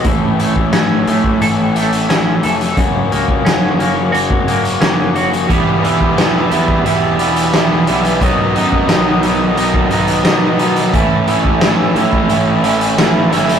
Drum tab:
HH |x-x-x-x-x-xxx-xx|x-x-x-x-x-xxx-xx|x-x-x-x-x-xxx-xx|x-x-x-x-x-xxx-xx|
SD |----o-------o---|----o-------o---|----o-------o---|----o-------o---|
BD |o--o---o--------|o--o-----o------|o--o---o--------|o--o-----o------|

HH |x-x-x-x-x-xxx-xx|
SD |----o-------o-o-|
BD |o--o---o--------|